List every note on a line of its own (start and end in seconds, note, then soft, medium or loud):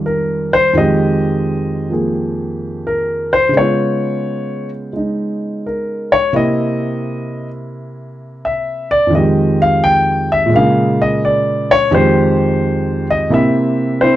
0.00 0.72 F2 medium
0.00 0.73 D#3 soft
0.00 0.74 G3 soft
0.00 0.75 G#3 medium
0.00 0.75 F4 soft
0.00 0.75 G4 medium
0.06 0.51 A#4 medium
0.53 0.74 C5 medium
0.73 3.53 F2 medium
0.73 3.53 D#3 soft
0.73 3.52 G#3 medium
0.78 3.55 G4 medium
0.78 1.89 D#5 medium
1.90 3.53 F3 soft
1.90 3.54 A#3 soft
1.90 3.54 G#4 soft
2.87 3.31 A#4 medium
3.33 3.53 C5 medium
3.49 6.30 C#3 medium
3.53 4.92 G#3 soft
3.53 6.34 B3 soft
3.57 6.36 F4 medium
3.57 4.69 C#5 medium
4.93 6.33 G#3 soft
4.93 6.34 D#4 soft
5.66 6.11 A#4 medium
6.12 6.33 C#5 loud
6.33 9.12 C3 medium
6.33 9.12 A#3 medium
6.33 9.13 C4 medium
6.33 9.13 E4 medium
6.33 7.48 D#5 medium
8.45 8.90 E5 medium
8.91 9.12 D5 medium
9.07 10.49 F2 medium
9.07 10.51 D#3 soft
9.14 10.48 G#3 soft
9.14 10.54 G4 medium
9.14 9.60 D#5 medium
9.62 9.82 F5 medium
9.84 10.29 G5 loud
10.32 10.52 E5 medium
10.46 11.88 A#2 medium
10.46 11.90 G#3 medium
10.54 11.94 C#3 medium
10.54 11.92 A#3 medium
10.54 11.00 F5 medium
11.02 11.22 D#5 medium
11.25 11.69 D5 medium
11.71 11.91 C#5 loud
11.91 13.31 F2 medium
11.91 13.31 D#3 medium
11.91 13.31 G#3 medium
11.91 13.31 G4 medium
11.91 13.06 C5 medium
13.10 13.31 D#5 medium
13.30 14.16 C3 medium
13.30 14.16 A#3 medium
13.30 14.01 C4 medium
13.30 14.02 E4 medium
13.30 14.16 E5 medium
14.01 14.16 C4 medium
14.01 14.16 E4 medium
14.01 14.16 C5 medium